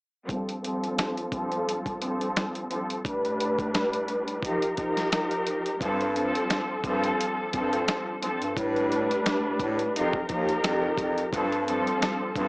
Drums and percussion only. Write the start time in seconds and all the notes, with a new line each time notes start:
0.29 kick, closed hi-hat
0.49 closed hi-hat
0.64 closed hi-hat
0.84 closed hi-hat
0.98 snare, closed hi-hat
1.17 closed hi-hat
1.32 kick, closed hi-hat
1.52 closed hi-hat
1.69 closed hi-hat
1.86 kick, closed hi-hat
2.02 closed hi-hat
2.21 closed hi-hat
2.36 snare, closed hi-hat
2.55 closed hi-hat
2.71 closed hi-hat
2.90 closed hi-hat
3.05 kick, closed hi-hat
3.25 closed hi-hat
3.40 closed hi-hat
3.59 kick, closed hi-hat
3.74 snare, closed hi-hat
3.93 closed hi-hat
4.08 closed hi-hat
4.28 closed hi-hat
4.43 kick, closed hi-hat
4.62 closed hi-hat
4.77 kick, closed hi-hat
4.97 snare, closed hi-hat
5.12 snare, closed hi-hat
5.31 closed hi-hat
5.47 closed hi-hat
5.66 closed hi-hat
5.81 kick, closed hi-hat
6.01 closed hi-hat
6.16 closed hi-hat
6.35 closed hi-hat
6.50 snare, closed hi-hat
6.84 kick, closed hi-hat
7.04 closed hi-hat
7.21 closed hi-hat
7.53 kick, closed hi-hat
7.73 closed hi-hat
7.88 snare, closed hi-hat
8.23 closed hi-hat
8.42 closed hi-hat
8.57 kick, closed hi-hat
8.76 closed hi-hat
8.92 closed hi-hat
9.11 closed hi-hat
9.26 snare, closed hi-hat
9.60 kick, closed hi-hat
9.79 closed hi-hat
9.96 closed hi-hat
10.13 kick
10.29 kick, closed hi-hat
10.49 closed hi-hat
10.64 snare, closed hi-hat
10.98 kick, closed hi-hat
11.18 closed hi-hat
11.33 kick, closed hi-hat
11.52 closed hi-hat
11.68 closed hi-hat
11.87 closed hi-hat
12.02 snare, closed hi-hat
12.36 kick, closed hi-hat